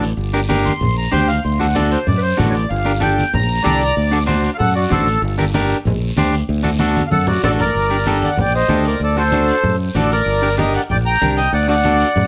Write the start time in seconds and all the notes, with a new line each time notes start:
Already playing: A1
0.02 short guiro
0.17 G1, high conga, long guiro
0.33 D4 G4 A#4
0.49 D4 G4 A#4, high conga, short guiro
0.65 C6, high conga, short guiro
0.81 A#1, high conga, low conga, long guiro
0.97 A#5
1.11 D2 D4 G4 C5 G5, high conga, short guiro
1.28 F5, short guiro
1.44 D2 C6, high conga, long guiro
1.59 D4 F#4 A4 F#5, high conga
1.75 D4 F#4 A4 D5, high conga, short guiro
1.91 C5, short guiro
2.07 F#2 D5, high conga, low conga, long guiro
2.17 B4
2.22 C5
2.37 A1 D4 F#4 A4, high conga, low conga, short guiro
2.50 C#5
2.54 D5, short guiro
2.70 G1 F5, high conga, long guiro
2.85 D4 G4 A#4
3.00 D4 G4 A4 G5, high conga, short guiro
3.18 high conga, short guiro
3.33 A#1 A#5, high conga, low conga, long guiro
3.63 C2 D4 G4 A4 D5 A#5, high conga, short guiro
3.81 short guiro
3.97 D2, high conga, long guiro
4.11 D4 F#4 A4
4.26 D4 F#4 C5, high conga, short guiro
4.44 short guiro
4.55 A4 F5
4.59 F#2 F#5, high conga, low conga, long guiro
4.75 F#4 D5
4.90 A1 D4 F#4 A4 C5, high conga, low conga, short guiro
5.07 short guiro
5.22 G1, high conga, long guiro
5.38 D4 G4 A#4, high conga
5.54 D4 G4 A#4, high conga, short guiro
5.70 short guiro
5.85 A#1, high conga, low conga, long guiro
6.16 D2 D4 G4 C5, high conga, short guiro
6.33 short guiro
6.49 D2, high conga, long guiro
6.63 D4 F#4 A4, high conga
6.79 D4 F#4 A4, high conga, short guiro
6.96 high conga, short guiro
7.07 A4 F5
7.11 F#2 F#5, high conga, long guiro
7.27 F#4 D5, low conga
7.43 A1 D4 F#4 A4 D5, low conga, short guiro
7.59 A#4 D5, low conga, short guiro
7.75 G1, high conga, long guiro
7.90 D4 G4 A#4
8.06 D4 G4 A4, high conga, short guiro
8.22 D5 F#5, high conga, short guiro
8.37 A#1 D5 G5, high conga, low conga, long guiro
8.55 C5 D#5
8.68 D2 D4 G4 A4, high conga, short guiro
8.85 A#4 D5, short guiro
9.00 D2 A4 D5, high conga, long guiro
9.17 D4 F#4 A4 C5
9.32 D4 F#4 A4, high conga, short guiro
9.48 short guiro
9.63 F#2, high conga, low conga, long guiro
9.94 A1 D4 F#4 A4 D5, high conga, short guiro
10.11 A#4 D5, short guiro
10.26 G1, high conga, long guiro
10.42 D4 G4 A#4
10.58 D4 G4 A#4 D#5, high conga, short guiro
10.74 D5 F#5, short guiro
10.90 A#1 D5 G5, high conga, low conga, long guiro
11.06 G5 A#5
11.21 C2 D4 G4 A#4, high conga, short guiro
11.37 D#5 G5, short guiro
11.53 D2 D5 F#5, high conga, long guiro
11.68 D4 F#4 A4 D5 F#5
11.83 D4 F#4 A4, high conga, short guiro
12.00 short guiro
12.16 F#2, high conga, low conga, long guiro